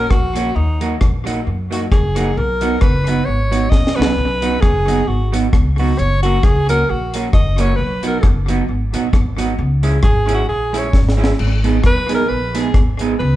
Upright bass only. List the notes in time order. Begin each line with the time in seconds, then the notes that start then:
0.11 A#1
0.56 D#2
1.02 A#1
1.47 F#2
1.92 F#1
2.37 B1
2.82 F#1
3.28 G#1
3.72 A#1
3.99 B1
4.18 B1
4.63 F#1
5.07 G#1
5.53 C#2
5.99 F#1
6.43 C#2
6.89 A#1
7.34 F#1
7.79 B1
8.24 F#1
8.68 G#1
8.94 A#1
9.14 G#1
9.59 C#2
10.03 G#1
10.49 A#1
10.94 G#1
11.40 G#1
11.84 B1
12.30 A#1
12.74 G#1
13.20 C#2